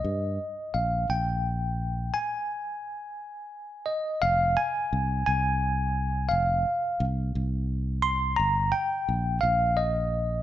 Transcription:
X:1
M:6/8
L:1/8
Q:3/8=58
K:Fm
V:1 name="Tine electric piano"
e2 f g3 | a4- a e | f a2 a3 | f2 z3 c' |
b g2 f e2 |]
V:2 name="Fingered electric bass" clef=bass
G,, z B,,, B,,,3 | z6 | F,,, z C,, C,,3 | F,,, z C,, C,,3 |
G,,, z B,,, B,,,3 |]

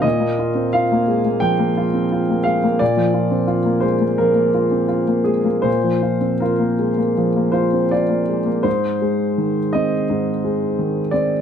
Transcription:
X:1
M:4/4
L:1/16
Q:1/4=85
K:Bbmix
V:1 name="Grand piano"
e4 f4 g6 f2 | d6 c2 B6 A2 | c4 B6 c2 d4 | c6 e8 d2 |]
V:2 name="Grand piano"
B,, B, F C F B, A, B, F, B, F C F B, A, B, | B,, F, F C F B, A, B, F, B, F C F B, A, B, | B,, F, F C F B, A, B, F, B, F C F B, A, B, | A,,2 A,2 E,2 C2 A,,2 A,2 E,2 C2 |]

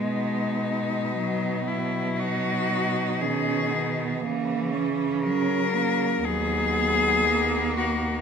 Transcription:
X:1
M:4/4
L:1/8
Q:1/4=59
K:B
V:1 name="Cello"
D3 E F2 G2 | z2 A2 G3 F |]
V:2 name="Cello"
B,4 D2 C B, | A, C C A, B,4 |]
V:3 name="Cello" clef=bass
G,2 F, F,3 D,2 | E,2 F,2 F,2 A,2 |]
V:4 name="Cello" clef=bass
B,,8 | C,4 D,,4 |]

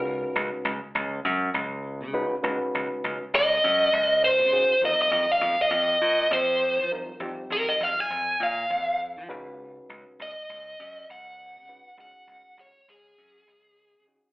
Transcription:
X:1
M:4/4
L:1/16
Q:"Swing 16ths" 1/4=101
K:Db
V:1 name="Lead electric guitar"
z16 | z6 e6 c4 | e e2 f2 e4- e c4 z2 | z2 B e f a3 f4 z4 |
z4 e6 g6 | g4 d2 A8 z2 |]
V:2 name="Reed electric piano"
[A,DEG_c]4 z8 z2 [A,DEGc]2 | [A,DEG_c]6 z8 [A,DEGA]2 | [=G,CEFB]6 z8 [G,CEFB]2 | [=G,CEF=G]6 z8 [A,DE_G_c]2- |
[A,DEG_c]4 z8 z2 [A,DEGc]2 | [A,DEGA]6 z8 [A,DEGA]2 |]
V:3 name="Slap bass" clef=bass
D,,2 D,, z D,, z D,,2 G,,2 D,,3 D,2 z | D,, z D,, z D,, z D,,2 G,,2 D,,3 D,2 z | F,, z F,, z F,, z F,,2 B,,2 F,,3 F,2 z | F,, z F,, z F,, z F,,2 B,,2 F,,3 F, D,,2- |
D,,2 D,, z D,, z D,,2 G,,2 D,,3 D,2 z | D,, z D,, z D,, z D,,2 G,,2 D,,3 D,2 z |]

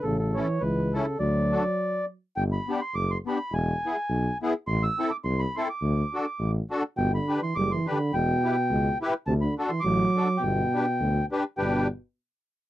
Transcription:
X:1
M:2/4
L:1/16
Q:"Swing" 1/4=104
K:D
V:1 name="Accordion"
A A c2 B2 A2 | d6 z2 | [K:G] g b2 c' d' c' b2 | ^g6 z2 |
c' e'2 d' c' b c' d'- | d'4- d' z3 | g b2 c' d' c' b2 | g6 z2 |
a b2 c' d'4 | g6 z2 | g2 z6 |]
V:2 name="Accordion"
z2 [CEA]2 z2 [CEA]2 | z2 [DFA]2 z4 | [K:G] z2 [B,DG]2 z2 [B,DG]2 | z2 [B,E^G]2 z2 [B,EG]2 |
z2 [CEA]2 z2 [CEA]2 | z2 [DFA]2 z2 [DFA]2 | z2 [DGB]2 z2 [DGB]2 | z2 [EGB]2 z2 [EGB]2 |
z2 [DFA]2 z2 [DFA]2 | z2 [DGB]2 z2 [DGB]2 | [DGB]2 z6 |]
V:3 name="Euphonium" clef=bass
C, C, E,2 E,2 C,2 | F,6 z2 | [K:G] z8 | z8 |
z8 | z8 | B,, D,2 E, G, E, D,2 | B,,6 z2 |
C, D,2 E, F,4 | B,,6 z2 | B,,2 z6 |]
V:4 name="Tuba" clef=bass
A,,,4 C,,4 | D,,4 z4 | [K:G] G,,,2 z2 F,,,2 z2 | E,,,2 z2 B,,,2 z2 |
A,,,2 z2 C,,2 z2 | D,,2 z2 A,,,2 z2 | G,,,2 z2 F,,,2 z2 | E,,,2 z2 ^C,,2 z2 |
D,,2 z2 A,,,2 z2 | G,,,2 z2 D,,2 z2 | G,,,2 z6 |]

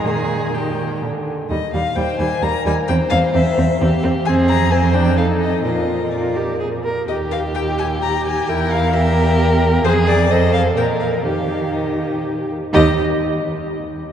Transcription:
X:1
M:3/4
L:1/8
Q:1/4=128
K:Eb
V:1 name="Violin"
a2 g2 z2 | e f g a b a | g f =e3 z | a b a g f e |
e2 d2 z2 | e f g a b a | g f =e3 z | c d e f g f |
f2 e2 z2 | e z4 z |]
V:2 name="Violin"
A2 G2 z2 | z2 c2 B2 | c4 G2 | A2 c2 =A2 |
B4- B z | G6 | =E2 G4 | A2 c2 B2 |
G4- G z | e z4 z |]
V:3 name="Viola"
E,2 E,2 D, z | G, G, G, G, G, G, | C C C C C C | C2 C D E2 |
F2 F G A B | G2 G2 G2 | B2 B4 | A2 =A2 B2 |
G2 G3 z | G z4 z |]
V:4 name="Cello" clef=bass
B,,4 B,, z | E,, E,, E,, E,, E,, E,, | =E,, E,, E,, E,, E,, E,, | F,,6 |
B,,4- B,, z | E,,6 | =E,,6 | F,,4 B,,2 |
E,4- E, z | E,, z4 z |]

